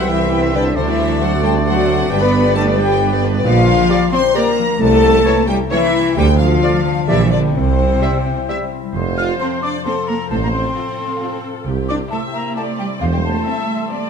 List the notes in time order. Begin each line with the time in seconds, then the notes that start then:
Already playing: C2 C3 B3 E4 F#4 G4 B4 E5
0.00 G5
0.07 E3 B3 E4 B4 E5 G5 B5
0.18 C4 C5 E5
0.31 B3 G4 B4 G5
0.42 C4 E4 C5 E5
0.54 D3 G3 B3 D4 B4 D5 G5
0.65 C4 E4 C5 E5
0.75 D2 C3 D3 A3 C4 D4 A4 C5 D5
0.87 E3 C4 E4 F#4 D5 E5
0.99 D4 A4 C5
1.10 C4 F#4 A4 D5
1.21 F#3 D4 F#4 A4 C5 F#5
1.32 C4 F#4 D5
1.43 G3 D4 G4 A4 C5 G5 A5
1.54 C4 F#4 C5 D5
1.66 F#3 D4 F#4 A4 C5 F#5
1.76 C4 F#4 D5
1.88 A3 D4 A4 C5
1.99 C4 F#4 D5
2.09 G1 G2 G3 D4 G4 B4 G5
2.21 B3 B4 D5 B5
2.32 D4 G4 B4
2.44 B3 G4 B4 D5
2.55 A3 D4 G4 A4 B4 A5
2.67 B3 B4 D5
2.77 G3 D4 G4 B4 G5
2.89 B3 B4 D5
3.01 D4 G4 B4
3.11 B3 B4 D5
3.22 D3 D4 G4 B4
3.34 B3 B4 D5
3.44 A#1 A#2 F3 F4 F5
3.56 A#3
3.67 D4
3.78 G4
3.89 G3 A#3 G4 A#4 D5
4.01 D5
4.12 C4 C5 G5 C6
4.23 A#4
4.35 G3 A#3 D4 G4 A#4 D5 A#5
4.46 A#3
4.58 F3
4.69 A#3
4.80 C2 C3 A3 A4 A5
4.92 A#3
5.03 C#4
5.14 E4
5.25 E3 A#3 E4 A#4 C#5
5.37 C#5
5.48 G3 G4 E5 G5
5.60 A#4
5.71 E3 A#3 C#4 E4 C#5 E5
5.83 A#3
5.93 G3
6.05 A#3
6.16 D2 D3 G3 G4 G5
6.29 D4
6.39 F3 F4 F5
6.51 A4
6.62 F3 A3 F4 D5
6.74 F5
6.86 A5
6.97 D5
7.08 A#1 A#2 E3 G3 E4 G4 D5 E5
7.20 G3
7.31 D3 D4 D5
7.43 G4
7.54 C2 C3 C4 C5
7.67 G3
7.79 E4
7.90 G4
8.01 G3 E4 G4 E5
8.14 E5
8.26 G5
8.38 G4
8.48 G3 E4 G4 E5
8.61 G3
8.72 C4
8.84 G3
8.95 F1 F2 C5
9.11 C3
9.18 F4 F5 F6
9.27 F4
9.40 C4 A4 C5 C6
9.57 F4
9.62 D4 D5 D6
9.72 F5
9.85 C4 F4 A4 C5 C6
10.02 A4
10.08 A#3 A#4 A#5
10.17 F4
10.30 A1 A2 A3 A4 C5 A5
10.42 A#3 A#4 A#5
10.47 A3
10.52 C4 C5 C6
10.62 F4
10.76 F4 A4 C5
10.92 F4
11.07 F5
11.22 F4
11.38 C5
11.53 F4
11.66 C2 C3 G4
11.82 C4
11.89 D4 D5 D6
11.97 E4
12.11 A3 E4 A4 C5 E5 A5
12.27 G4
12.34 A#3 A#4 A#5
12.41 E5
12.56 A3 E4 G4 A4 D5 A5
12.72 C5
12.79 G3 G4 G5
12.87 E4
13.01 E1 E2 E3 F3 F4 C5 F5
13.13 G3 G4 G5
13.17 G3
13.24 A3 A4 A5
13.32 C5
13.46 C4 G4 E5
13.62 E5
13.76 C6
13.91 C4 D5 E5
14.06 G4